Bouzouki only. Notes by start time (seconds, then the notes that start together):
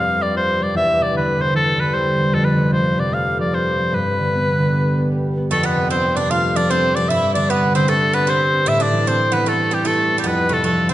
5.51 A3
5.63 B3
5.90 C4
6.17 D4
6.31 F4
6.56 D4
6.71 C4
6.97 D4
7.10 E4
7.35 D4
7.50 B3
7.75 C4
7.88 A3
8.13 B3
8.27 C4
8.66 E4
8.80 D4
9.07 C4
9.32 B3
9.46 A3
9.71 G3
9.85 A3
10.18 G3
10.24 B3
10.49 A3
10.64 A3
10.89 C4